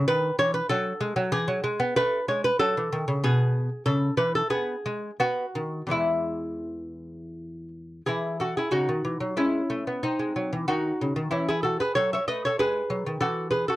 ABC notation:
X:1
M:3/4
L:1/16
Q:1/4=94
K:E
V:1 name="Lute"
B2 c B A4 G4 | B2 c B A4 G4 | A2 B A G4 F4 | E8- E2 z2 |
[K:C#m] [EG]2 [FA] [EG] [DF]4 [CE]4 | [^B,D]4 [DF]4 [CE] [EG] [FA] [G=B] | [Ac] [ce] [Bd] [Ac] [GB]4 [FA]2 [GB] [FA] |]
V:2 name="Lute" clef=bass
D,2 E,2 F,2 G, F, E, F, G, B, | A,2 G,2 F, E, D, C, B,,4 | C,2 E,2 B,2 G,2 B,2 D,2 | [E,,E,G,]12 |
[K:C#m] E,4 C, D, E, F, G,2 A, B, | z G, F, E, D,2 C, D, E,4 | F,2 A,2 G,2 F, D, E,4 |]